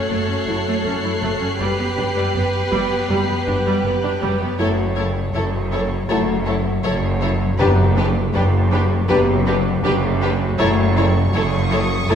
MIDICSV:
0, 0, Header, 1, 11, 480
1, 0, Start_track
1, 0, Tempo, 750000
1, 1023, Time_signature, 4, 2, 24, 8
1, 7776, End_track
2, 0, Start_track
2, 0, Title_t, "Violin section"
2, 0, Program_c, 0, 48
2, 0, Note_on_c, 0, 90, 35
2, 0, Note_on_c, 0, 96, 38
2, 2201, Note_off_c, 0, 96, 0
2, 2681, Note_off_c, 0, 90, 0
2, 6779, Note_on_c, 0, 85, 63
2, 7258, Note_on_c, 0, 87, 64
2, 7730, Note_on_c, 0, 88, 55
2, 7776, Note_off_c, 0, 85, 0
2, 7776, Note_off_c, 0, 87, 0
2, 7776, Note_off_c, 0, 88, 0
2, 7776, End_track
3, 0, Start_track
3, 0, Title_t, "Violin section"
3, 0, Program_c, 1, 48
3, 0, Note_on_c, 1, 73, 49
3, 999, Note_off_c, 1, 73, 0
3, 1025, Note_on_c, 1, 71, 58
3, 2919, Note_off_c, 1, 71, 0
3, 2937, Note_on_c, 1, 73, 61
3, 2988, Note_off_c, 1, 73, 0
3, 3178, Note_on_c, 1, 73, 52
3, 3230, Note_off_c, 1, 73, 0
3, 3421, Note_on_c, 1, 73, 51
3, 3472, Note_off_c, 1, 73, 0
3, 3662, Note_on_c, 1, 73, 52
3, 3713, Note_off_c, 1, 73, 0
3, 3903, Note_on_c, 1, 73, 60
3, 3954, Note_off_c, 1, 73, 0
3, 4139, Note_on_c, 1, 73, 50
3, 4190, Note_off_c, 1, 73, 0
3, 4381, Note_on_c, 1, 73, 63
3, 4432, Note_off_c, 1, 73, 0
3, 4622, Note_on_c, 1, 73, 58
3, 4673, Note_off_c, 1, 73, 0
3, 4855, Note_on_c, 1, 71, 72
3, 4907, Note_off_c, 1, 71, 0
3, 5102, Note_on_c, 1, 71, 64
3, 5154, Note_off_c, 1, 71, 0
3, 5342, Note_on_c, 1, 71, 60
3, 5393, Note_off_c, 1, 71, 0
3, 5582, Note_on_c, 1, 71, 61
3, 5634, Note_off_c, 1, 71, 0
3, 5819, Note_on_c, 1, 71, 72
3, 5870, Note_off_c, 1, 71, 0
3, 6062, Note_on_c, 1, 71, 58
3, 6114, Note_off_c, 1, 71, 0
3, 6304, Note_on_c, 1, 71, 69
3, 6355, Note_off_c, 1, 71, 0
3, 6540, Note_on_c, 1, 71, 68
3, 6591, Note_off_c, 1, 71, 0
3, 6783, Note_on_c, 1, 73, 80
3, 6834, Note_off_c, 1, 73, 0
3, 7028, Note_on_c, 1, 73, 69
3, 7079, Note_off_c, 1, 73, 0
3, 7264, Note_on_c, 1, 73, 67
3, 7315, Note_off_c, 1, 73, 0
3, 7502, Note_on_c, 1, 73, 64
3, 7553, Note_off_c, 1, 73, 0
3, 7746, Note_on_c, 1, 73, 68
3, 7776, Note_off_c, 1, 73, 0
3, 7776, End_track
4, 0, Start_track
4, 0, Title_t, "Felt piano"
4, 0, Program_c, 2, 0
4, 0, Control_c, 2, 64, 127
4, 1034, Control_c, 2, 64, 0
4, 1157, Control_c, 2, 64, 127
4, 1975, Note_on_c, 2, 71, 41
4, 2955, Control_c, 2, 64, 0
4, 3063, Control_c, 2, 64, 127
4, 3393, Note_off_c, 2, 71, 0
4, 4874, Control_c, 2, 64, 0
4, 4979, Control_c, 2, 64, 127
4, 6796, Control_c, 2, 64, 0
4, 6909, Control_c, 2, 64, 127
4, 7776, End_track
5, 0, Start_track
5, 0, Title_t, "Violin section"
5, 0, Program_c, 3, 48
5, 0, Note_on_c, 3, 69, 48
5, 999, Note_off_c, 3, 69, 0
5, 1025, Note_on_c, 3, 67, 56
5, 2919, Note_off_c, 3, 67, 0
5, 2946, Note_on_c, 3, 69, 65
5, 2998, Note_off_c, 3, 69, 0
5, 3188, Note_on_c, 3, 69, 46
5, 3239, Note_off_c, 3, 69, 0
5, 3429, Note_on_c, 3, 69, 56
5, 3480, Note_off_c, 3, 69, 0
5, 3668, Note_on_c, 3, 69, 57
5, 3719, Note_off_c, 3, 69, 0
5, 3907, Note_on_c, 3, 69, 67
5, 3958, Note_off_c, 3, 69, 0
5, 4139, Note_on_c, 3, 69, 55
5, 4190, Note_off_c, 3, 69, 0
5, 4380, Note_on_c, 3, 69, 62
5, 4431, Note_off_c, 3, 69, 0
5, 4620, Note_on_c, 3, 69, 54
5, 4671, Note_off_c, 3, 69, 0
5, 4862, Note_on_c, 3, 67, 76
5, 4913, Note_off_c, 3, 67, 0
5, 5109, Note_on_c, 3, 67, 60
5, 5160, Note_off_c, 3, 67, 0
5, 5344, Note_on_c, 3, 67, 63
5, 5395, Note_off_c, 3, 67, 0
5, 5587, Note_on_c, 3, 67, 62
5, 5638, Note_off_c, 3, 67, 0
5, 5821, Note_on_c, 3, 67, 74
5, 5872, Note_off_c, 3, 67, 0
5, 6065, Note_on_c, 3, 67, 65
5, 6116, Note_off_c, 3, 67, 0
5, 6304, Note_on_c, 3, 67, 71
5, 6355, Note_off_c, 3, 67, 0
5, 6544, Note_on_c, 3, 67, 62
5, 6596, Note_off_c, 3, 67, 0
5, 6782, Note_on_c, 3, 69, 81
5, 6833, Note_off_c, 3, 69, 0
5, 7021, Note_on_c, 3, 69, 65
5, 7072, Note_off_c, 3, 69, 0
5, 7265, Note_on_c, 3, 69, 68
5, 7316, Note_off_c, 3, 69, 0
5, 7503, Note_on_c, 3, 69, 66
5, 7554, Note_off_c, 3, 69, 0
5, 7739, Note_on_c, 3, 69, 76
5, 7776, Note_off_c, 3, 69, 0
5, 7776, End_track
6, 0, Start_track
6, 0, Title_t, "Viola section"
6, 0, Program_c, 4, 48
6, 60, Note_on_c, 4, 57, 56
6, 173, Note_off_c, 4, 57, 0
6, 182, Note_on_c, 4, 61, 41
6, 230, Note_off_c, 4, 61, 0
6, 305, Note_on_c, 4, 64, 43
6, 353, Note_off_c, 4, 64, 0
6, 427, Note_on_c, 4, 57, 55
6, 537, Note_off_c, 4, 57, 0
6, 550, Note_on_c, 4, 61, 49
6, 597, Note_off_c, 4, 61, 0
6, 662, Note_on_c, 4, 64, 50
6, 710, Note_off_c, 4, 64, 0
6, 782, Note_on_c, 4, 57, 54
6, 894, Note_off_c, 4, 57, 0
6, 897, Note_on_c, 4, 61, 48
6, 946, Note_off_c, 4, 61, 0
6, 1021, Note_on_c, 4, 55, 62
6, 1133, Note_off_c, 4, 55, 0
6, 1144, Note_on_c, 4, 59, 43
6, 1191, Note_off_c, 4, 59, 0
6, 1260, Note_on_c, 4, 62, 44
6, 1309, Note_off_c, 4, 62, 0
6, 1382, Note_on_c, 4, 55, 61
6, 1494, Note_off_c, 4, 55, 0
6, 1501, Note_on_c, 4, 59, 38
6, 1550, Note_off_c, 4, 59, 0
6, 1735, Note_on_c, 4, 55, 67
6, 1851, Note_off_c, 4, 55, 0
6, 1853, Note_on_c, 4, 59, 51
6, 1903, Note_off_c, 4, 59, 0
6, 1976, Note_on_c, 4, 55, 62
6, 2091, Note_off_c, 4, 55, 0
6, 2098, Note_on_c, 4, 59, 47
6, 2147, Note_off_c, 4, 59, 0
6, 2221, Note_on_c, 4, 62, 54
6, 2269, Note_off_c, 4, 62, 0
6, 2337, Note_on_c, 4, 55, 70
6, 2451, Note_off_c, 4, 55, 0
6, 2459, Note_on_c, 4, 59, 53
6, 2508, Note_off_c, 4, 59, 0
6, 2577, Note_on_c, 4, 62, 62
6, 2626, Note_off_c, 4, 62, 0
6, 2698, Note_on_c, 4, 55, 70
6, 2812, Note_off_c, 4, 55, 0
6, 2816, Note_on_c, 4, 59, 62
6, 2865, Note_off_c, 4, 59, 0
6, 2934, Note_on_c, 4, 64, 57
6, 2985, Note_off_c, 4, 64, 0
6, 3175, Note_on_c, 4, 64, 51
6, 3226, Note_off_c, 4, 64, 0
6, 3417, Note_on_c, 4, 64, 54
6, 3469, Note_off_c, 4, 64, 0
6, 3662, Note_on_c, 4, 64, 52
6, 3713, Note_off_c, 4, 64, 0
6, 3903, Note_on_c, 4, 64, 63
6, 3954, Note_off_c, 4, 64, 0
6, 4141, Note_on_c, 4, 64, 54
6, 4193, Note_off_c, 4, 64, 0
6, 4379, Note_on_c, 4, 64, 60
6, 4431, Note_off_c, 4, 64, 0
6, 4619, Note_on_c, 4, 64, 60
6, 4671, Note_off_c, 4, 64, 0
6, 4860, Note_on_c, 4, 62, 70
6, 4911, Note_off_c, 4, 62, 0
6, 5099, Note_on_c, 4, 62, 64
6, 5151, Note_off_c, 4, 62, 0
6, 5338, Note_on_c, 4, 62, 67
6, 5389, Note_off_c, 4, 62, 0
6, 5574, Note_on_c, 4, 62, 61
6, 5625, Note_off_c, 4, 62, 0
6, 5819, Note_on_c, 4, 62, 69
6, 5871, Note_off_c, 4, 62, 0
6, 6060, Note_on_c, 4, 62, 62
6, 6111, Note_off_c, 4, 62, 0
6, 6295, Note_on_c, 4, 62, 67
6, 6347, Note_off_c, 4, 62, 0
6, 6537, Note_on_c, 4, 62, 63
6, 6589, Note_off_c, 4, 62, 0
6, 6775, Note_on_c, 4, 64, 77
6, 6826, Note_off_c, 4, 64, 0
6, 7020, Note_on_c, 4, 64, 66
6, 7071, Note_off_c, 4, 64, 0
6, 7263, Note_on_c, 4, 64, 65
6, 7314, Note_off_c, 4, 64, 0
6, 7494, Note_on_c, 4, 64, 64
6, 7546, Note_off_c, 4, 64, 0
6, 7740, Note_on_c, 4, 64, 77
6, 7776, Note_off_c, 4, 64, 0
6, 7776, End_track
7, 0, Start_track
7, 0, Title_t, "French horn section"
7, 0, Program_c, 5, 60
7, 0, Note_on_c, 5, 57, 55
7, 0, Note_on_c, 5, 66, 50
7, 923, Note_off_c, 5, 57, 0
7, 923, Note_off_c, 5, 66, 0
7, 1032, Note_on_c, 5, 71, 55
7, 1033, Note_on_c, 5, 59, 57
7, 2922, Note_off_c, 5, 59, 0
7, 2922, Note_off_c, 5, 71, 0
7, 2938, Note_on_c, 5, 66, 63
7, 2939, Note_on_c, 5, 57, 68
7, 3112, Note_off_c, 5, 66, 0
7, 3113, Note_off_c, 5, 57, 0
7, 3896, Note_on_c, 5, 66, 72
7, 3898, Note_on_c, 5, 57, 70
7, 4071, Note_off_c, 5, 66, 0
7, 4072, Note_off_c, 5, 57, 0
7, 4855, Note_on_c, 5, 67, 74
7, 4859, Note_on_c, 5, 59, 74
7, 5031, Note_off_c, 5, 67, 0
7, 5033, Note_off_c, 5, 59, 0
7, 5820, Note_on_c, 5, 59, 70
7, 5821, Note_on_c, 5, 67, 75
7, 5993, Note_off_c, 5, 59, 0
7, 5994, Note_off_c, 5, 67, 0
7, 6782, Note_on_c, 5, 64, 78
7, 6786, Note_on_c, 5, 57, 87
7, 6955, Note_off_c, 5, 64, 0
7, 6956, Note_off_c, 5, 57, 0
7, 7740, Note_on_c, 5, 57, 79
7, 7740, Note_on_c, 5, 64, 73
7, 7776, Note_off_c, 5, 57, 0
7, 7776, Note_off_c, 5, 64, 0
7, 7776, End_track
8, 0, Start_track
8, 0, Title_t, "Cello section"
8, 0, Program_c, 6, 48
8, 68, Note_on_c, 6, 42, 55
8, 115, Note_off_c, 6, 42, 0
8, 185, Note_on_c, 6, 42, 38
8, 233, Note_off_c, 6, 42, 0
8, 304, Note_on_c, 6, 42, 41
8, 352, Note_off_c, 6, 42, 0
8, 424, Note_on_c, 6, 42, 55
8, 472, Note_off_c, 6, 42, 0
8, 548, Note_on_c, 6, 42, 42
8, 595, Note_off_c, 6, 42, 0
8, 667, Note_on_c, 6, 42, 43
8, 714, Note_off_c, 6, 42, 0
8, 787, Note_on_c, 6, 42, 54
8, 834, Note_off_c, 6, 42, 0
8, 906, Note_on_c, 6, 42, 43
8, 954, Note_off_c, 6, 42, 0
8, 1026, Note_on_c, 6, 42, 58
8, 1074, Note_off_c, 6, 42, 0
8, 1146, Note_on_c, 6, 42, 42
8, 1194, Note_off_c, 6, 42, 0
8, 1267, Note_on_c, 6, 42, 39
8, 1314, Note_off_c, 6, 42, 0
8, 1383, Note_on_c, 6, 42, 61
8, 1431, Note_off_c, 6, 42, 0
8, 1507, Note_on_c, 6, 42, 47
8, 1554, Note_off_c, 6, 42, 0
8, 1744, Note_on_c, 6, 42, 59
8, 1792, Note_off_c, 6, 42, 0
8, 1864, Note_on_c, 6, 42, 45
8, 1911, Note_off_c, 6, 42, 0
8, 1983, Note_on_c, 6, 42, 65
8, 2031, Note_off_c, 6, 42, 0
8, 2100, Note_on_c, 6, 42, 46
8, 2149, Note_off_c, 6, 42, 0
8, 2220, Note_on_c, 6, 42, 50
8, 2268, Note_off_c, 6, 42, 0
8, 2342, Note_on_c, 6, 42, 66
8, 2390, Note_off_c, 6, 42, 0
8, 2463, Note_on_c, 6, 42, 50
8, 2511, Note_off_c, 6, 42, 0
8, 2580, Note_on_c, 6, 42, 53
8, 2628, Note_off_c, 6, 42, 0
8, 2701, Note_on_c, 6, 42, 66
8, 2749, Note_off_c, 6, 42, 0
8, 2820, Note_on_c, 6, 42, 52
8, 2869, Note_off_c, 6, 42, 0
8, 2943, Note_on_c, 6, 42, 66
8, 3366, Note_off_c, 6, 42, 0
8, 3420, Note_on_c, 6, 42, 75
8, 3845, Note_off_c, 6, 42, 0
8, 3901, Note_on_c, 6, 42, 74
8, 4325, Note_off_c, 6, 42, 0
8, 4383, Note_on_c, 6, 42, 78
8, 4806, Note_off_c, 6, 42, 0
8, 4862, Note_on_c, 6, 42, 81
8, 5286, Note_off_c, 6, 42, 0
8, 5343, Note_on_c, 6, 42, 80
8, 5766, Note_off_c, 6, 42, 0
8, 5821, Note_on_c, 6, 42, 84
8, 6245, Note_off_c, 6, 42, 0
8, 6302, Note_on_c, 6, 42, 85
8, 6726, Note_off_c, 6, 42, 0
8, 6782, Note_on_c, 6, 42, 92
8, 7206, Note_off_c, 6, 42, 0
8, 7261, Note_on_c, 6, 42, 87
8, 7685, Note_off_c, 6, 42, 0
8, 7740, Note_on_c, 6, 42, 87
8, 7776, Note_off_c, 6, 42, 0
8, 7776, End_track
9, 0, Start_track
9, 0, Title_t, "Marimba"
9, 0, Program_c, 7, 12
9, 63, Note_on_c, 7, 42, 55
9, 207, Note_off_c, 7, 42, 0
9, 308, Note_on_c, 7, 54, 39
9, 451, Note_off_c, 7, 54, 0
9, 549, Note_on_c, 7, 42, 42
9, 691, Note_off_c, 7, 42, 0
9, 790, Note_on_c, 7, 42, 40
9, 932, Note_off_c, 7, 42, 0
9, 1028, Note_on_c, 7, 42, 53
9, 1170, Note_off_c, 7, 42, 0
9, 1265, Note_on_c, 7, 42, 46
9, 1408, Note_off_c, 7, 42, 0
9, 1505, Note_on_c, 7, 42, 45
9, 1649, Note_off_c, 7, 42, 0
9, 1744, Note_on_c, 7, 42, 44
9, 1888, Note_off_c, 7, 42, 0
9, 1984, Note_on_c, 7, 42, 61
9, 2128, Note_off_c, 7, 42, 0
9, 2221, Note_on_c, 7, 54, 43
9, 2366, Note_off_c, 7, 54, 0
9, 2459, Note_on_c, 7, 42, 51
9, 2604, Note_off_c, 7, 42, 0
9, 2703, Note_on_c, 7, 42, 51
9, 2847, Note_off_c, 7, 42, 0
9, 2938, Note_on_c, 7, 42, 69
9, 3083, Note_off_c, 7, 42, 0
9, 3182, Note_on_c, 7, 42, 53
9, 3326, Note_off_c, 7, 42, 0
9, 3427, Note_on_c, 7, 42, 57
9, 3570, Note_off_c, 7, 42, 0
9, 3662, Note_on_c, 7, 42, 53
9, 3807, Note_off_c, 7, 42, 0
9, 3899, Note_on_c, 7, 42, 73
9, 4044, Note_off_c, 7, 42, 0
9, 4142, Note_on_c, 7, 54, 51
9, 4286, Note_off_c, 7, 54, 0
9, 4382, Note_on_c, 7, 42, 59
9, 4526, Note_off_c, 7, 42, 0
9, 4625, Note_on_c, 7, 42, 64
9, 4769, Note_off_c, 7, 42, 0
9, 4861, Note_on_c, 7, 42, 84
9, 5006, Note_off_c, 7, 42, 0
9, 5102, Note_on_c, 7, 42, 61
9, 5246, Note_off_c, 7, 42, 0
9, 5344, Note_on_c, 7, 42, 62
9, 5488, Note_off_c, 7, 42, 0
9, 5580, Note_on_c, 7, 42, 58
9, 5725, Note_off_c, 7, 42, 0
9, 5819, Note_on_c, 7, 42, 87
9, 5964, Note_off_c, 7, 42, 0
9, 6059, Note_on_c, 7, 54, 64
9, 6204, Note_off_c, 7, 54, 0
9, 6297, Note_on_c, 7, 42, 71
9, 6443, Note_off_c, 7, 42, 0
9, 6538, Note_on_c, 7, 42, 69
9, 6684, Note_off_c, 7, 42, 0
9, 6780, Note_on_c, 7, 42, 89
9, 6925, Note_off_c, 7, 42, 0
9, 7021, Note_on_c, 7, 42, 74
9, 7166, Note_off_c, 7, 42, 0
9, 7260, Note_on_c, 7, 42, 65
9, 7405, Note_off_c, 7, 42, 0
9, 7501, Note_on_c, 7, 42, 60
9, 7645, Note_off_c, 7, 42, 0
9, 7741, Note_on_c, 7, 42, 87
9, 7776, Note_off_c, 7, 42, 0
9, 7776, End_track
10, 0, Start_track
10, 0, Title_t, "Timpani"
10, 0, Program_c, 8, 47
10, 4857, Note_on_c, 8, 42, 70
10, 5554, Note_off_c, 8, 42, 0
10, 7776, End_track
11, 0, Start_track
11, 0, Title_t, "Double bass section"
11, 0, Program_c, 10, 48
11, 59, Note_on_c, 10, 30, 55
11, 108, Note_off_c, 10, 30, 0
11, 299, Note_on_c, 10, 30, 41
11, 348, Note_off_c, 10, 30, 0
11, 541, Note_on_c, 10, 30, 42
11, 589, Note_off_c, 10, 30, 0
11, 782, Note_on_c, 10, 30, 57
11, 830, Note_off_c, 10, 30, 0
11, 1024, Note_on_c, 10, 30, 61
11, 1072, Note_off_c, 10, 30, 0
11, 1268, Note_on_c, 10, 30, 44
11, 1315, Note_off_c, 10, 30, 0
11, 1508, Note_on_c, 10, 30, 47
11, 1555, Note_off_c, 10, 30, 0
11, 1743, Note_on_c, 10, 30, 60
11, 1791, Note_off_c, 10, 30, 0
11, 1983, Note_on_c, 10, 30, 62
11, 2031, Note_off_c, 10, 30, 0
11, 2225, Note_on_c, 10, 30, 47
11, 2272, Note_off_c, 10, 30, 0
11, 2460, Note_on_c, 10, 30, 47
11, 2508, Note_off_c, 10, 30, 0
11, 2703, Note_on_c, 10, 30, 63
11, 2751, Note_off_c, 10, 30, 0
11, 2946, Note_on_c, 10, 30, 69
11, 3368, Note_off_c, 10, 30, 0
11, 3427, Note_on_c, 10, 30, 74
11, 3848, Note_off_c, 10, 30, 0
11, 3904, Note_on_c, 10, 30, 71
11, 4327, Note_off_c, 10, 30, 0
11, 4383, Note_on_c, 10, 30, 78
11, 4807, Note_off_c, 10, 30, 0
11, 4861, Note_on_c, 10, 30, 92
11, 5286, Note_off_c, 10, 30, 0
11, 5344, Note_on_c, 10, 30, 87
11, 5767, Note_off_c, 10, 30, 0
11, 5822, Note_on_c, 10, 30, 92
11, 6246, Note_off_c, 10, 30, 0
11, 6304, Note_on_c, 10, 30, 89
11, 6727, Note_off_c, 10, 30, 0
11, 6781, Note_on_c, 10, 30, 96
11, 7205, Note_off_c, 10, 30, 0
11, 7260, Note_on_c, 10, 30, 88
11, 7685, Note_off_c, 10, 30, 0
11, 7734, Note_on_c, 10, 30, 85
11, 7776, Note_off_c, 10, 30, 0
11, 7776, End_track
0, 0, End_of_file